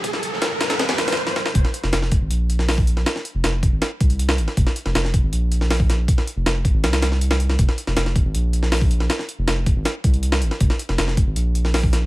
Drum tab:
HH |x---x---x---x-x-x-x-x-xx--------|x---x---x---x---x---x---o---x---|x---x---x---x---x---x-x-x---x---|x---x---x---x---x---x---o---x---|
SD |--o---o-o---o-o-o-o-o-ooo-o-o-o-|--o---o-o-o-----------o-o-----o-|o-o-----o-------o---------o---o-|--o---o-o-o-----------o-o---o---|
BD |o-------------------------------|o-----------o-------------o-----|------------o-------o-----------|o-----------o-------------o-----|

HH |x---x---x---x---x-x-x---x---x---|x---x---x---x---x---x---o---x---|x---x---x---x---x---x-x-x---x---|x---x---x---x---x---x---o---x---|
SD |--o-----o-------o-o-o-o---o---o-|--o---o-o-o-----------o-o-----o-|o-o-----o-------o---------o---o-|--o---o-o-o-----------o-o---o---|
BD |o-----------o-------------------|o-----------o-------------o-----|------------o-------o-----------|o-----------o-------------o-----|